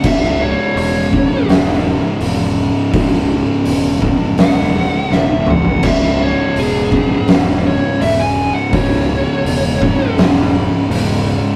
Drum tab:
CC |x---------------|----------------|x---------------|----------------|
HH |----o---o---o---|o---o---o-------|----o---o---o---|o---o---o---o---|
SD |-o------o-------|-o------o---o---|-o------o-------|-o------o-------|
T2 |----------------|--------------o-|----------------|----------------|
FT |----------------|---------------o|----------------|----------------|
BD |o-----o---------|o-----o---------|o-----o---------|o-----o---------|